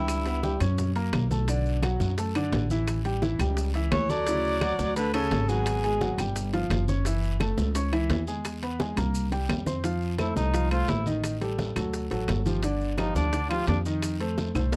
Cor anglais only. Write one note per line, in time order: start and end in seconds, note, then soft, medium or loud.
0.00 0.57 E4 medium
3.92 4.12 C#5 loud
4.10 4.96 D5 loud
4.96 5.13 B4 medium
5.14 5.50 A4 loud
5.49 6.19 G#4 medium
10.19 10.35 E4 medium
10.36 10.69 D#4 medium
10.71 10.90 F4 loud
10.89 11.06 E4 medium
12.98 13.15 D#4 medium
13.16 13.48 D4 medium
13.50 13.67 F4 loud
13.68 13.79 D4 medium
14.73 14.76 D#4 medium